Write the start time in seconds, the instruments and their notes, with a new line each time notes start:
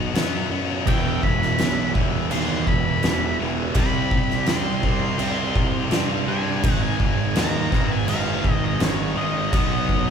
Already playing: picked electric bass B1, distorted electric guitar B2 F#3 B3, string section B3 F#4 D#5
0.14 picked electric bass F#2, distorted electric guitar B2 F#3 B3, snare, crash
0.50 picked electric bass F#2, distorted electric guitar B2 F#3 B3
0.86 picked electric bass E1, distorted electric guitar E2 B2 E3, string section G3 E4, lead electric guitar G5, kick, crash
1.23 picked electric bass E1, lead electric guitar B5, kick
1.42 snare
1.58 picked electric bass B1, distorted electric guitar E2 B2 E3, snare, crash
1.95 picked electric bass E1, distorted electric guitar E2 B2 E3, kick
2.30 picked electric bass D#2, distorted electric guitar E2 B2 E3, lead electric guitar C6, crash
2.67 picked electric bass E1, lead electric guitar B5, kick
3.03 picked electric bass E1, distorted electric guitar E2 B2 E3, snare, crash
3.39 picked electric bass E1, distorted electric guitar E2 B2 E3
3.75 picked electric bass C2, distorted electric guitar C3 G3 C4, string section C4 D#5, kick, crash
3.80 lead electric guitar B5
4.11 kick
4.30 snare
4.46 picked electric bass C2, distorted electric guitar C3 G3 C4, lead electric guitar C6, snare, crash
4.83 picked electric bass C2, distorted electric guitar C3 G3 C4, kick
5.18 picked electric bass C2, distorted electric guitar C3 G3 C4, crash
5.56 picked electric bass C2, kick
5.91 picked electric bass G2, distorted electric guitar C3 G3 C4, snare, crash
6.27 picked electric bass G2, distorted electric guitar C3 G3 C4, lead electric guitar G#5
6.63 picked electric bass G#1, distorted electric guitar G#2 D#3 G#3, string section G#3 D#4 B4, kick, crash
6.83 lead electric guitar G#5
7.00 picked electric bass G#1, kick
7.35 picked electric bass D#2, distorted electric guitar G#2 D#3 G#3, lead electric guitar A#5, snare, crash
7.72 picked electric bass G#1, distorted electric guitar G#2 D#3 G#3, kick, snare
7.92 lead electric guitar G#5
8.08 picked electric bass F#1, distorted electric guitar G#2 D#3 G#3, lead electric guitar F5, crash
8.44 picked electric bass G#1, kick
8.52 lead electric guitar D#5
8.65 lead electric guitar D#5
8.80 picked electric bass G#1, distorted electric guitar G#2 D#3 G#3, lead electric guitar C#5, snare, crash
9.16 picked electric bass G#1, distorted electric guitar G#2 D#3 G#3, lead electric guitar D#5
9.51 picked electric bass B1, distorted electric guitar B2 F#3 B3, string section B3 F#4 D#5, kick, crash
9.89 kick